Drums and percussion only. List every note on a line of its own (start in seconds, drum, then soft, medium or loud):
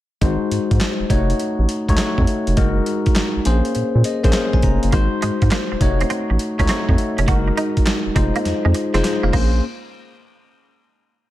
0.22 kick loud
0.22 closed hi-hat medium
0.51 closed hi-hat medium
0.71 kick medium
0.71 closed hi-hat soft
0.80 snare loud
0.80 clap medium
0.80 closed hi-hat medium
1.10 kick loud
1.10 closed hi-hat medium
1.30 closed hi-hat soft
1.40 closed hi-hat medium
1.69 closed hi-hat medium
1.89 kick medium
1.89 closed hi-hat medium
1.97 snare loud
1.97 clap medium
1.97 closed hi-hat medium
2.18 kick medium
2.27 closed hi-hat medium
2.47 closed hi-hat medium
2.57 kick loud
2.57 closed hi-hat medium
2.86 closed hi-hat medium
3.06 kick loud
3.06 closed hi-hat soft
3.15 snare loud
3.15 clap medium
3.15 closed hi-hat medium
3.45 closed hi-hat medium
3.65 closed hi-hat medium
3.75 closed hi-hat medium
4.04 closed hi-hat medium
4.24 kick medium
4.24 closed hi-hat medium
4.32 snare loud
4.32 clap medium
4.32 closed hi-hat medium
4.53 kick medium
4.62 kick medium
4.62 closed hi-hat medium
4.83 closed hi-hat medium
4.92 kick loud
4.92 closed hi-hat medium
5.22 closed hi-hat medium
5.42 kick medium
5.42 closed hi-hat soft
5.51 snare loud
5.51 clap medium
5.51 closed hi-hat medium
5.81 kick loud
5.81 closed hi-hat medium
6.01 closed hi-hat medium
6.10 closed hi-hat medium
6.39 closed hi-hat medium
6.59 kick medium
6.59 closed hi-hat soft
6.68 snare loud
6.68 clap medium
6.68 closed hi-hat medium
6.89 kick medium
6.98 closed hi-hat medium
7.18 closed hi-hat medium
7.28 kick loud
7.28 closed hi-hat medium
7.57 closed hi-hat medium
7.77 kick medium
7.77 closed hi-hat soft
7.86 snare loud
7.86 clap medium
7.86 closed hi-hat medium
8.16 kick loud
8.16 closed hi-hat medium
8.36 closed hi-hat medium
8.45 snare soft
8.45 closed hi-hat medium
8.74 closed hi-hat medium
8.94 snare medium
8.94 closed hi-hat medium
9.04 snare medium
9.04 closed hi-hat medium
9.33 kick loud
9.33 crash medium